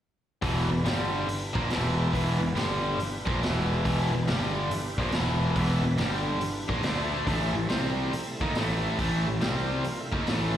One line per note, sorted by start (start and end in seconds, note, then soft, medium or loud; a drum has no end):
0.42 0.68 E1 medium
0.42 0.67 E2 medium
0.42 0.68 B2 medium
0.42 0.69 E3 medium
0.42 0.85 B3 medium
0.42 0.84 E4 medium
0.42 0.84 G4 medium
0.42 0.85 B4 medium
0.42 kick loud
0.42 open hi-hat medium
0.69 0.83 E1 medium
0.69 0.81 E2 medium
0.69 0.81 B2 medium
0.84 1.24 G1 medium
0.84 1.27 G2 medium
0.84 1.27 D3 medium
0.84 1.27 G3 loud
0.84 1.28 G3 medium
0.84 1.28 D4 medium
0.84 1.27 G4 medium
0.84 1.28 D5 medium
0.84 snare medium
0.84 open hi-hat medium
1.27 2.56 B3 medium
1.27 2.56 E4 medium
1.27 2.55 G4 medium
1.27 2.56 B4 medium
1.27 muted picked electric bass stroke soft
1.27 muted overdriven electric guitar stroke medium
1.27 open hi-hat medium
1.53 1.68 A#1 medium
1.53 1.69 A#2 medium
1.53 1.69 F3 loud
1.53 1.69 A#3 loud
1.53 kick loud
1.69 2.09 E1 medium
1.69 2.11 E2 medium
1.69 2.12 B2 medium
1.69 2.12 E3 loud
1.69 snare loud
1.69 open hi-hat medium
2.13 2.39 E1 medium
2.13 2.39 E2 loud
2.13 2.40 B2 loud
2.13 2.40 E3 loud
2.13 kick medium
2.13 open hi-hat medium
2.39 2.54 E1 medium
2.39 2.53 E2 medium
2.39 2.53 B2 medium
2.54 2.95 G1 medium
2.54 2.98 G2 medium
2.54 2.98 D3 medium
2.54 2.98 G3 medium
2.54 2.99 G3 loud
2.54 2.99 D4 medium
2.54 2.98 G4 medium
2.54 2.98 D5 medium
2.54 snare medium
2.54 open hi-hat soft
2.98 4.28 B3 medium
2.98 4.27 E4 medium
2.98 4.27 G4 medium
2.98 4.27 B4 medium
2.98 muted overdriven electric guitar stroke medium
2.98 muted picked electric bass stroke soft
2.98 open hi-hat medium
3.26 3.40 A#1 medium
3.26 3.41 A#2 medium
3.26 3.41 F3 loud
3.26 3.41 A#3 medium
3.26 kick loud
3.41 3.81 E1 medium
3.41 3.83 E2 medium
3.41 3.84 B2 medium
3.41 3.84 E3 medium
3.41 snare loud
3.41 open hi-hat medium
3.84 4.11 E1 medium
3.84 4.11 E2 medium
3.84 4.12 B2 medium
3.84 4.12 E3 loud
3.84 kick medium
3.84 open hi-hat medium
4.13 4.26 E1 medium
4.13 4.25 E2 medium
4.13 4.25 B2 medium
4.27 4.68 G1 medium
4.27 4.70 G2 medium
4.27 4.70 D3 medium
4.27 4.70 G3 loud
4.27 4.71 G3 medium
4.27 4.71 D4 medium
4.27 4.71 G4 medium
4.27 4.71 D5 medium
4.27 snare loud
4.27 open hi-hat soft
4.71 5.98 B3 medium
4.71 5.98 E4 medium
4.71 5.98 G4 medium
4.71 5.98 B4 medium
4.71 muted picked electric bass stroke soft
4.71 muted overdriven electric guitar stroke medium
4.71 open hi-hat medium
4.98 5.12 A#1 medium
4.98 5.13 A#2 medium
4.98 5.13 F3 medium
4.98 5.14 A#3 medium
4.98 kick loud
5.12 5.53 E1 medium
5.12 5.55 E2 medium
5.12 5.55 B2 medium
5.12 5.56 E3 medium
5.12 snare loud
5.12 open hi-hat medium
5.56 5.82 E1 medium
5.56 5.83 E2 medium
5.56 5.83 B2 medium
5.56 5.84 E3 loud
5.56 kick medium
5.56 open hi-hat medium
5.83 5.97 E1 medium
5.83 5.96 E2 medium
5.83 5.96 B2 medium
5.98 6.39 G1 loud
5.98 6.41 G2 medium
5.98 6.41 D3 medium
5.98 6.41 G3 medium
5.98 6.42 G3 medium
5.98 6.42 D4 medium
5.98 6.41 G4 medium
5.98 6.42 D5 medium
5.98 snare loud
5.98 open hi-hat soft
6.41 6.85 B3 medium
6.41 6.85 E4 medium
6.41 6.85 G4 medium
6.41 6.85 B4 medium
6.41 muted picked electric bass stroke soft
6.41 muted overdriven electric guitar stroke medium
6.41 open hi-hat medium
6.68 6.82 A#1 medium
6.68 6.83 A#2 medium
6.68 6.84 F3 medium
6.68 6.84 A#3 medium
6.68 kick medium
6.83 7.23 D2 medium
6.83 7.26 D3 medium
6.83 7.27 A3 medium
6.83 7.27 D4 medium
6.83 7.27 A4 medium
6.83 7.27 D5 medium
6.83 snare loud
6.83 open hi-hat medium
7.27 7.53 A1 medium
7.27 7.54 A2 medium
7.27 7.54 E3 medium
7.27 7.54 A3 loud
7.27 7.70 A3 medium
7.27 7.71 E4 medium
7.27 7.70 A4 medium
7.27 7.70 E5 medium
7.27 kick medium
7.27 open hi-hat medium
7.54 7.68 A1 medium
7.54 7.67 A2 medium
7.54 7.67 E3 medium
7.69 8.09 C2 medium
7.69 8.12 C3 medium
7.69 8.12 G3 medium
7.69 8.12 C4 medium
7.69 8.12 C4 loud
7.69 8.12 G4 medium
7.69 8.12 C5 medium
7.69 8.12 G5 medium
7.69 snare loud
7.69 open hi-hat soft
8.11 9.39 A3 medium
8.11 9.39 E4 medium
8.11 9.39 A4 medium
8.11 9.39 E5 medium
8.11 muted picked electric bass stroke soft
8.11 muted overdriven electric guitar stroke medium
8.11 open hi-hat medium
8.41 8.54 D#2 medium
8.41 8.55 D#3 medium
8.41 8.55 A#3 medium
8.41 8.56 D#4 loud
8.41 kick loud
8.54 8.95 A1 medium
8.54 8.98 A2 medium
8.54 8.98 E3 medium
8.54 8.99 A3 medium
8.54 snare loud
8.54 open hi-hat medium
8.98 9.24 A1 medium
8.98 9.26 A2 medium
8.98 9.26 E3 loud
8.98 9.26 A3 loud
8.98 kick medium
8.98 open hi-hat medium
9.27 9.40 A1 medium
9.27 9.39 A2 medium
9.27 9.39 E3 medium
9.41 9.81 C2 loud
9.41 9.83 C3 medium
9.41 9.84 G3 medium
9.41 9.84 C4 medium
9.41 9.84 G4 medium
9.41 9.85 C5 medium
9.41 9.84 G5 medium
9.41 snare loud
9.41 open hi-hat medium
9.84 9.99 A#3 medium
9.84 9.99 F4 medium
9.84 9.99 A#4 medium
9.84 9.99 F5 medium
9.84 muted overdriven electric guitar stroke medium
9.84 muted picked electric bass stroke soft
9.84 open hi-hat medium
10.00 10.57 A3 medium
10.00 10.57 E4 medium
10.00 10.57 A4 medium
10.00 10.57 E5 medium
10.12 10.26 D#2 medium
10.12 10.26 D#3 medium
10.12 10.27 A#3 medium
10.12 10.27 D#4 medium
10.12 kick medium
10.27 10.57 A1 medium
10.27 10.57 A2 medium
10.27 10.57 E3 loud
10.27 10.57 A3 loud
10.27 snare loud
10.27 open hi-hat medium